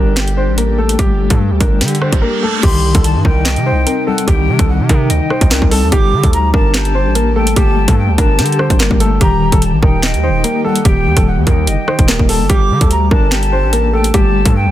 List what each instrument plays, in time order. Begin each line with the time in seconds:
Already playing: 808-style bass G1, clean electric guitar G3 D4, ambient pad G3 G4 A4, grand piano A#4
0.16 clean electric guitar G4, snare, clap, closed hi-hat
0.28 closed hi-hat
0.37 clean electric guitar D4, grand piano C5
0.48 808-style bass A1
0.58 clean electric guitar A#3, grand piano A#4, closed hi-hat
0.78 clean electric guitar A3, grand piano A4
0.89 closed hi-hat
0.99 808-style bass G1, clean electric guitar G3, grand piano G4, kick, closed hi-hat
1.30 808-style bass G2, grand piano A4, kick, closed hi-hat
1.51 808-style bass D2
1.60 808-style bass G1, clean electric guitar D4, grand piano A#4, kick, closed hi-hat
1.81 808-style bass D3, clean electric guitar G4, snare, closed hi-hat, reverse cymbal
1.88 closed hi-hat
1.95 closed hi-hat
2.01 clean electric guitar D4, grand piano C5, cross-stick
2.12 808-style bass G1, kick, closed hi-hat
2.22 clean electric guitar A#3, grand piano A#4
2.43 clean electric guitar A3, grand piano A4
2.63 808-style bass C2, ambient pad C3 G3 D#4, clean electric guitar D#3, grand piano G4, flute C6, kick, closed hi-hat, crash
2.95 808-style bass C2, grand piano A4, kick, closed hi-hat
3.04 flute A5, closed hi-hat
3.15 808-style bass G2
3.25 808-style bass C2, clean electric guitar D#4, grand piano A#4, flute G5, kick
3.45 clean electric guitar D#5, snare, clap, closed hi-hat
3.56 808-style bass C3, closed hi-hat
3.66 clean electric guitar D#4, grand piano C5
3.71 808-style bass C2
3.86 clean electric guitar C4, grand piano A#4, closed hi-hat
4.07 clean electric guitar G3, grand piano A4, flute F#5
4.18 closed hi-hat
4.27 808-style bass C2, clean electric guitar D#3, grand piano G4, flute G5, kick, closed hi-hat
4.48 808-style bass C3
4.59 808-style bass C2, grand piano A4, kick, cross-stick, closed hi-hat
4.69 flute F#5
4.80 808-style bass C3
4.89 808-style bass C3, clean electric guitar D#4, grand piano A#4, flute G5, kick, closed hi-hat
5.10 808-style bass D2, clean electric guitar D#5, closed hi-hat
5.30 clean electric guitar D#4, grand piano C5, cross-stick
5.41 808-style bass C2, kick, closed hi-hat
5.51 clean electric guitar C4, grand piano A#4, snare, clap
5.62 808-style bass C2, kick
5.71 clean electric guitar G3, grand piano A4, flute A5, open hi-hat
5.82 808-style bass D#2
5.92 808-style bass G1, ambient pad G3 G4 A4, clean electric guitar G3, grand piano G4, flute D6, kick, closed hi-hat
6.13 808-style bass D3
6.24 808-style bass D2, grand piano A4, kick, closed hi-hat
6.33 flute A#5, closed hi-hat
6.54 808-style bass G1, clean electric guitar D4, grand piano A#4, flute A5, kick
6.74 clean electric guitar G4, snare, clap, closed hi-hat
6.85 closed hi-hat
6.95 clean electric guitar D4, grand piano C5
7.06 808-style bass A1
7.15 clean electric guitar A#3, grand piano A#4, closed hi-hat
7.36 clean electric guitar A3, grand piano A4, flute G5
7.47 closed hi-hat
7.56 808-style bass G1, clean electric guitar G3, grand piano G4, flute A5, kick, closed hi-hat
7.88 808-style bass G2, grand piano A4, kick, closed hi-hat
7.98 flute G5
8.09 808-style bass D2
8.18 808-style bass G1, clean electric guitar D4, grand piano A#4, flute A5, kick, closed hi-hat
8.38 808-style bass D3, clean electric guitar G4, snare, closed hi-hat
8.46 closed hi-hat
8.52 closed hi-hat
8.59 clean electric guitar D4, grand piano C5, cross-stick
8.70 808-style bass G1, kick, closed hi-hat
8.80 clean electric guitar A#3, grand piano A#4, snare, clap
8.91 808-style bass G1, kick
9.00 clean electric guitar A3, grand piano A4, closed hi-hat
9.21 808-style bass D#1, ambient pad D#3, clean electric guitar D#3, grand piano G4, flute A#5, kick, closed hi-hat
9.52 808-style bass D#1, grand piano A4, kick, closed hi-hat
9.62 flute A5, closed hi-hat
9.73 808-style bass A#1
9.82 808-style bass D#1, clean electric guitar D#4, grand piano A#4, flute G5, kick
10.03 clean electric guitar D#5, snare, clap, closed hi-hat
10.14 808-style bass D#2, closed hi-hat
10.23 clean electric guitar D#4, grand piano C5
10.29 808-style bass D#1
10.44 clean electric guitar A#3, grand piano A#4, closed hi-hat
10.64 clean electric guitar G3, grand piano A4, flute F#5
10.76 closed hi-hat
10.85 808-style bass D#1, clean electric guitar D#3, grand piano G4, flute G5, kick, closed hi-hat
11.06 808-style bass D#2
11.17 808-style bass D#1, grand piano A4, kick, cross-stick, closed hi-hat
11.27 flute F#5
11.37 808-style bass D#2
11.47 808-style bass D#2, clean electric guitar D#4, grand piano A#4, flute G5, kick, closed hi-hat
11.67 808-style bass F#1, clean electric guitar D#5, closed hi-hat
11.88 clean electric guitar D#4, grand piano C5, cross-stick
11.99 808-style bass D#1, kick, closed hi-hat
12.08 clean electric guitar A#3, grand piano A#4, snare, clap
12.19 808-style bass D#1, kick
12.29 clean electric guitar G3, grand piano A4, flute A5, open hi-hat
12.40 808-style bass G1
12.49 808-style bass G1, clean electric guitar G3, grand piano G4, ambient pad A4, flute D6, kick, closed hi-hat
12.70 808-style bass D3
12.81 808-style bass D2, grand piano A4, kick, closed hi-hat
12.91 flute A#5, closed hi-hat
13.11 808-style bass G1, clean electric guitar D4, grand piano A#4, flute A5, kick
13.31 clean electric guitar G4, snare, clap, closed hi-hat
13.43 closed hi-hat
13.52 clean electric guitar D4, grand piano C5
13.63 808-style bass A1
13.73 clean electric guitar A#3, grand piano A#4, closed hi-hat
13.93 clean electric guitar A3, grand piano A4, flute G5
14.04 closed hi-hat
14.14 808-style bass G1, clean electric guitar G3, grand piano G4, flute A5, kick, closed hi-hat
14.45 808-style bass G2, grand piano A4, kick, closed hi-hat
14.55 flute G5
14.66 808-style bass D2